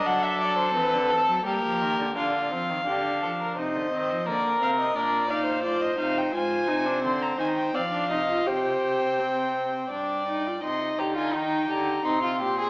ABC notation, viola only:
X:1
M:3/4
L:1/16
Q:1/4=85
K:Cm
V:1 name="Viola"
D4 C4 B,4 | D2 C2 D4 E2 C2 | B,2 C2 D2 E2 F2 E2 | F2 E D C2 E2 C D E F |
G4 C4 D2 E F | E8 C4 |]